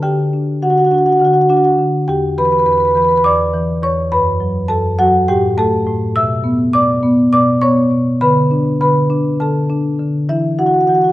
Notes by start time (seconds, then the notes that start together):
0.03 D3 G4 G5
0.33 D4
0.62 D3 F#4 F#5
0.70 F#4 F#5
0.77 F#4 F#5
0.84 F#4 F#5
0.91 D4 F#4 F#5
0.98 F#4 F#5
1.06 F#4 F#5
1.12 F#5
1.17 F#4 F#5
1.21 D3 F#4
1.26 F#5
1.33 F#4 F#5
1.41 F#4 F#5
1.49 D4 F#4 F#5
1.57 F#4 F#5
1.64 F#4 F#5
1.79 D3
2.08 E2 G4 G5
2.38 E3 B4 B5
2.44 B4 B5
2.51 B4 B5
2.59 B4 B5
2.66 E2 B4 B5
2.72 B4 B5
2.78 B4 B5
2.85 B4 B5
2.91 B4 B5
2.95 E3 B5
3.02 B4 B5
3.09 B4 B5
3.16 B4 B5
3.24 E2 D5 D6
3.54 E3
3.83 E2 C#5 C#6
4.12 F#2 B4 B5
4.40 F#3
4.68 F#2 A4 A5
4.99 F#3 F#4 F#5
5.28 A2 G4 G5
5.58 A3 A4 A5
5.87 A2
6.15 B2 E5 E6
6.44 B3
6.73 B2 D5 D6
7.03 B3
7.33 B2 D5 D6
7.62 B3 C#5 C#6
7.91 B2
8.21 D3 B4 B5
8.51 D4
8.81 D3 B4 B5
9.10 D4
9.40 D3 A4 A5
9.70 D4
10.00 D3
10.29 E3 E4 E5
10.59 E4 F#4 F#5
10.66 F#4 F#5
10.74 F#4 F#5
10.80 F#4 F#5
10.87 E3 F#4 F#5
10.95 F#4 F#5
11.01 F#4 F#5
11.09 F#5